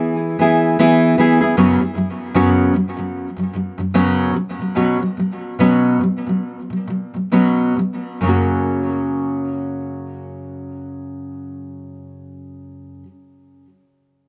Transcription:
0.00 0.38 E3 medium
0.00 0.40 B3 medium
0.00 0.40 E4 medium
0.00 0.40 G#4 medium
0.39 0.78 E3 medium
0.39 0.78 B3 medium
0.39 0.79 E4 medium
0.39 0.80 G#4 medium
0.79 1.17 E3 medium
0.79 1.18 B3 loud
0.79 1.19 E4 loud
0.79 1.19 G#4 loud
1.18 1.41 E3 medium
1.18 1.42 B3 medium
1.18 1.41 E4 medium
1.18 1.40 G#4 medium
1.41 1.56 B3 medium
1.41 1.57 E4 medium
1.41 1.57 G#4 medium
1.57 1.79 F#2 medium
1.57 1.80 C#3 medium
1.57 1.81 F#3 medium
1.57 1.81 B3 medium
1.57 1.81 C#4 medium
1.57 1.81 F#4 medium
1.80 1.94 F#2 soft
1.80 1.95 C#3 soft
1.80 1.97 F#3 medium
1.95 2.28 F#2 medium
1.95 2.29 C#3 medium
1.95 2.30 F#3 medium
2.34 2.72 F#2 medium
2.34 2.74 C#3 medium
2.34 2.75 F#3 medium
2.34 2.75 B3 medium
2.34 2.75 C#4 medium
2.34 2.75 F#4 medium
2.74 2.96 F#2 soft
2.74 2.97 C#3 medium
2.74 2.98 F#3 medium
2.97 3.28 F#2 soft
2.97 3.29 C#3 medium
2.97 3.29 F#3 medium
3.36 3.52 F#2 soft
3.36 3.54 C#3 soft
3.36 3.55 F#3 soft
3.53 3.77 F#2 medium
3.53 3.78 C#3 medium
3.53 3.79 F#3 medium
3.78 3.93 F#2 medium
3.78 3.93 C#3 medium
3.78 3.94 F#3 medium
3.94 4.35 F#2 medium
3.94 4.33 C#3 medium
3.94 4.35 F#3 medium
3.94 4.35 B3 medium
3.94 4.36 C#4 medium
3.94 4.36 F#4 medium
4.34 4.58 B2 medium
4.34 4.60 F#3 medium
4.59 4.74 B2 soft
4.59 4.75 F#3 soft
4.75 4.99 B2 medium
4.75 5.01 F#3 medium
4.75 5.01 B3 medium
4.75 5.01 C#4 medium
4.75 5.01 F#4 medium
5.00 5.16 B2 soft
5.00 5.18 F#3 medium
5.17 5.52 B2 soft
5.17 5.54 F#3 medium
5.59 6.00 B2 medium
5.59 6.02 F#3 medium
5.59 6.02 B3 medium
5.59 6.02 C#4 medium
5.59 6.02 F#4 medium
6.01 6.25 B2 medium
6.01 6.28 F#3 medium
6.27 6.60 B2 soft
6.27 6.61 F#3 soft
6.70 6.86 B2 soft
6.70 6.89 F#3 soft
6.87 7.13 B2 medium
6.87 7.15 F#3 medium
7.14 7.30 B2 soft
7.14 7.31 F#3 soft
7.32 7.75 B2 medium
7.32 7.77 F#3 medium
7.32 7.77 B3 medium
7.32 7.78 C#4 medium
7.32 7.78 F#4 medium
7.77 8.15 B2 soft
7.77 8.17 F#3 medium
8.21 13.03 F#2 medium
8.21 13.05 C#3 medium
8.21 13.06 F#3 medium
8.26 13.08 A#3 medium
8.26 13.10 C#4 medium
8.26 13.11 F#4 medium

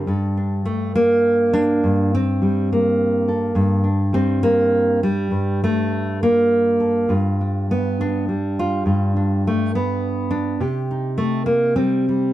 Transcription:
0.00 0.65 G3 medium
0.07 1.83 G2 medium
0.07 1.87 A4 medium
0.37 1.53 D4 soft
0.65 0.95 A3 medium
0.95 2.13 A#3 medium
1.53 2.12 D4 loud
1.84 3.55 G2 medium
2.15 3.28 C4 loud
2.42 2.72 G3 medium
2.73 3.86 A#3 medium
3.28 3.55 A4 medium
3.55 5.30 G2 medium
3.55 5.28 A4 medium
3.84 4.14 D4 soft
4.13 4.43 G3 medium
4.13 5.02 C4 loud
4.43 5.02 A#3 loud
5.03 5.62 G3 loud
5.31 7.08 G2 medium
5.64 6.21 A3 loud
6.23 7.12 A#3 medium
6.80 7.07 A4 soft
7.09 8.84 G2 medium
7.09 8.58 F4 medium
7.41 8.00 D4 soft
7.71 8.28 B3 medium
8.01 9.15 D4 medium
8.29 9.47 G3 medium
8.59 8.86 F4 loud
8.86 10.60 G2 medium
8.86 10.57 F4 soft
9.16 10.29 D4 soft
9.47 9.75 A3 medium
9.75 10.61 B3 medium
10.31 10.60 D4 loud
10.60 12.33 C3 medium
10.60 12.33 G4 medium
10.91 11.75 D#4 medium
11.18 11.46 A3 loud
11.46 11.77 A#3 medium
11.76 12.08 G3 medium
11.76 12.33 C4 loud
12.09 12.33 G3 soft

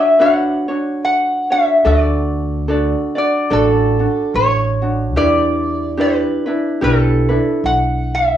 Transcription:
0.00 0.19 D4 soft
0.00 0.19 F#4 soft
0.00 0.20 C#5 soft
0.00 0.21 E5 medium
0.19 0.67 D4 medium
0.19 0.67 F#4 medium
0.19 0.67 B4 medium
0.19 0.67 C#5 medium
0.19 1.03 F#5 medium
0.68 1.52 D4 soft
0.68 1.51 F#4 soft
0.68 1.49 C#5 soft
1.05 1.51 F#5 medium
1.50 1.84 D4 soft
1.50 1.85 F#4 soft
1.50 1.85 C#5 soft
1.50 1.86 E5 medium
1.84 2.93 D2 loud
1.84 2.68 D4 medium
1.84 2.68 F#4 medium
1.84 2.67 A4 medium
1.84 2.70 D5 medium
1.84 2.64 D5 medium
2.68 3.16 D4 medium
2.68 3.15 F#4 medium
2.68 3.15 A4 medium
2.68 3.14 D5 medium
3.15 3.50 D4 soft
3.15 3.50 F#4 soft
3.15 3.50 D5 soft
3.15 3.53 D5 medium
3.50 4.04 A1 medium
3.50 3.98 D4 medium
3.50 3.98 F#4 medium
3.50 3.98 A4 medium
3.50 4.37 A4 medium
3.50 3.98 D5 medium
3.99 4.82 D4 soft
3.99 4.81 F#4 soft
4.34 5.16 A1 medium
4.34 5.17 C#5 medium
4.82 5.15 D4 soft
4.82 5.16 F#4 soft
5.16 6.24 E2 loud
5.16 5.97 D4 medium
5.16 5.98 E4 medium
5.16 5.96 G4 medium
5.16 5.98 B4 medium
5.16 6.02 D5 medium
5.97 6.46 D4 medium
5.97 6.46 E4 soft
5.97 6.45 G4 medium
5.97 6.45 B4 medium
5.97 6.85 B4 medium
6.46 6.81 D4 soft
6.46 6.81 E4 soft
6.46 6.81 B4 soft
6.81 7.36 B1 medium
6.81 7.29 D4 medium
6.81 7.29 E4 medium
6.81 7.29 G4 medium
6.81 7.68 A4 medium
6.81 7.28 B4 medium
7.29 8.37 D4 soft
7.29 8.37 E4 soft
7.29 8.37 B4 soft
7.64 8.37 B1 medium
7.64 8.13 F#5 medium
8.15 8.37 E5 medium

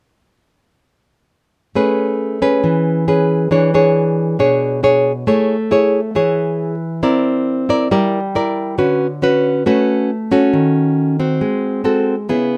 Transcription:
1.75 2.61 A3 soft
1.75 2.38 C#4 soft
1.75 2.38 G#4 soft
1.75 2.38 B4 soft
2.42 3.04 C#4 soft
2.42 3.04 G#4 soft
2.42 3.04 B4 soft
2.64 3.49 E3 medium
3.08 3.50 C#4 soft
3.08 3.50 G#4 soft
3.08 3.50 B4 medium
3.51 4.37 E3 medium
3.51 3.70 D4 soft
3.51 3.70 G#4 soft
3.51 3.70 C#5 soft
3.74 4.36 D4 medium
3.74 4.36 G#4 medium
3.74 4.36 C#5 medium
4.39 5.25 B2 medium
4.39 4.80 D4 soft
4.39 4.80 G#4 soft
4.39 4.80 C#5 soft
4.83 5.11 D4 soft
4.83 5.12 G#4 soft
4.83 5.12 C#5 medium
5.27 6.13 A3 medium
5.27 5.55 E4 soft
5.27 5.56 G#4 soft
5.27 5.56 C#5 soft
5.71 5.99 E4 soft
5.71 5.99 G#4 medium
5.71 6.00 C#5 medium
6.15 7.01 E3 medium
6.15 6.74 E4 medium
6.15 6.74 G#4 medium
6.15 6.74 C#5 soft
7.03 7.88 C4 medium
7.03 7.65 E4 medium
7.03 7.65 A#4 soft
7.03 7.65 D5 medium
7.69 7.87 E4 soft
7.69 7.87 A#4 medium
7.69 7.88 D5 medium
7.91 8.77 G3 medium
7.91 8.19 E4 soft
7.91 8.19 A#4 medium
7.91 8.20 D5 medium
8.35 8.77 E4 medium
8.35 8.77 A#4 soft
8.35 8.77 D5 soft
8.78 9.64 D3 medium
8.78 9.06 C#4 soft
8.78 9.06 F#4 medium
8.78 9.07 B4 medium
9.22 9.63 C#4 soft
9.22 9.63 F#4 soft
9.22 9.63 B4 medium
9.66 10.52 A3 medium
9.66 10.10 C#4 medium
9.66 10.10 F#4 medium
9.66 10.10 B4 medium
10.32 11.16 C#4 medium
10.32 11.16 F#4 medium
10.32 11.16 A4 medium
10.53 11.39 D#3 medium
11.20 11.82 C4 soft
11.20 11.82 F#4 soft
11.41 12.27 G#3 medium
11.84 12.15 C4 soft
11.84 12.15 F#4 medium
11.84 12.15 A4 medium
12.29 12.57 C#3 medium
12.29 12.57 B3 medium
12.29 12.57 E4 soft
12.29 12.57 G#4 soft

